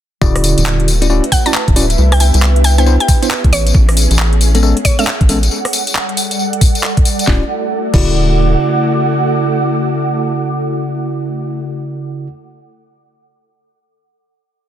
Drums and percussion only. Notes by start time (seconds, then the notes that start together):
0.22 kick, tambourine
0.36 cross-stick, open hi-hat
0.44 open hi-hat, tambourine
0.58 closed hi-hat, tambourine
0.66 clap
0.80 closed hi-hat
0.88 open hi-hat, tambourine
1.02 closed hi-hat, tambourine
1.10 tambourine
1.24 closed hi-hat
1.32 kick, open hi-hat, tambourine
1.46 closed hi-hat, tambourine
1.54 clap
1.68 kick, closed hi-hat
1.76 open hi-hat, tambourine
1.90 closed hi-hat, tambourine
1.98 tambourine
2.12 cross-stick, open hi-hat
2.20 open hi-hat, tambourine
2.34 closed hi-hat, tambourine
2.42 clap
2.56 closed hi-hat
2.64 open hi-hat, tambourine
2.78 closed hi-hat, tambourine
2.86 tambourine
3.00 closed hi-hat
3.08 kick, open hi-hat, tambourine
3.23 closed hi-hat, tambourine
3.31 clap
3.44 kick, closed hi-hat
3.53 open hi-hat, tambourine
3.67 closed hi-hat, tambourine
3.75 kick
3.89 cross-stick, open hi-hat
3.97 open hi-hat, tambourine
4.11 closed hi-hat, tambourine
4.19 clap
4.33 closed hi-hat
4.41 open hi-hat, tambourine
4.55 closed hi-hat, tambourine
4.63 tambourine
4.77 closed hi-hat
4.85 kick, open hi-hat, tambourine
4.99 closed hi-hat, tambourine
5.07 clap
5.21 kick, closed hi-hat
5.29 open hi-hat, tambourine
5.43 closed hi-hat, tambourine
5.51 tambourine
5.65 cross-stick, open hi-hat
5.73 open hi-hat, tambourine
5.87 closed hi-hat, tambourine
5.95 clap
6.09 closed hi-hat
6.17 open hi-hat, tambourine
6.31 closed hi-hat, tambourine
6.39 tambourine
6.53 closed hi-hat
6.61 kick, open hi-hat, tambourine
6.75 closed hi-hat, tambourine
6.83 clap
6.97 kick, closed hi-hat
7.05 open hi-hat, tambourine
7.19 closed hi-hat, tambourine
7.27 kick, snare
7.94 kick, crash